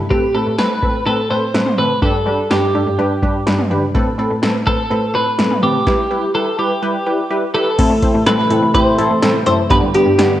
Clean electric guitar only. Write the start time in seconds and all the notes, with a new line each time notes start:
0.11 G4
0.35 A4
0.59 B4
1.07 A4
1.31 C5
1.79 B4
2.03 A4
2.51 G4
4.67 A4
5.15 B4
5.63 G4
6.35 A4
6.59 G4
7.55 A4
8.27 B4
8.75 C5
9.47 C5
9.71 B4
9.95 G4